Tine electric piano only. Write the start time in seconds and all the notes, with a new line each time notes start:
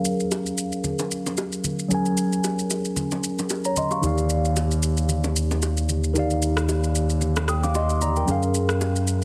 Already playing: F#3 C#4 G#4 A#4 F5
1.88 F#3 C#4 G#4
1.93 A#4 G#5
3.65 C#5 A#5
3.77 D#5 C6
3.92 F5 C#6
4.01 D#3 D#4 G4
4.05 D5 F5
6.13 D#3 D#4 G4
6.18 D5 F5
7.49 G5 D#6
7.63 F5 D6
7.75 D#5 C6
8.02 D5 A#5
8.17 A#4 G5
8.25 F#3 C#4 G#4
8.30 A#4 F5